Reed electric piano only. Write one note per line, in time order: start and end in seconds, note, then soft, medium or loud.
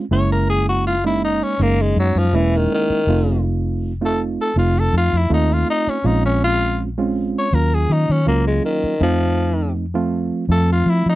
0.11 0.95 G#3 medium
0.11 0.95 A#3 medium
0.11 0.95 C#4 medium
0.11 0.95 E4 medium
1.04 1.54 G#3 medium
1.04 1.54 A#3 medium
1.04 1.54 C#4 medium
1.04 1.54 D#4 medium
1.59 2.26 G#3 medium
1.59 2.27 A#3 medium
1.59 2.26 C#4 medium
1.59 2.26 D#4 medium
2.34 3.01 G#3 medium
2.34 3.01 A#3 medium
2.34 3.01 C#4 medium
2.34 3.01 E4 medium
3.09 3.92 A3 medium
3.09 3.92 C4 medium
3.09 3.92 D#4 medium
3.09 3.92 F4 loud
4.01 4.51 A3 medium
4.01 4.51 C4 medium
4.01 4.51 D#4 medium
4.01 4.51 F4 medium
4.57 5.23 A3 medium
4.57 5.24 C4 medium
4.57 5.24 D#4 medium
4.57 5.24 F4 medium
5.30 5.97 A3 medium
5.30 5.97 C4 medium
5.30 5.97 D#4 medium
5.30 5.97 F4 medium
6.04 6.88 G#3 medium
6.04 6.88 C4 medium
6.04 6.88 C#4 medium
6.04 6.88 F4 loud
6.98 7.47 G#3 medium
6.98 7.47 C4 medium
6.98 7.48 C#4 medium
6.98 7.48 F4 medium
7.53 8.20 F#3 medium
7.53 8.20 A#3 medium
7.53 8.20 C#4 medium
7.53 8.20 F4 medium
8.26 8.93 F#3 medium
8.26 8.94 A#3 medium
8.26 8.94 C#4 medium
8.26 8.94 F4 loud
9.01 9.84 F3 medium
9.01 9.84 A3 medium
9.01 9.85 C4 medium
9.01 9.85 D#4 medium
9.94 10.44 F3 medium
9.94 10.44 A3 medium
9.94 10.44 C4 medium
9.94 10.44 F4 loud
10.50 11.15 F3 medium
10.50 11.15 A3 medium
10.50 11.15 C4 medium
10.50 11.15 F4 medium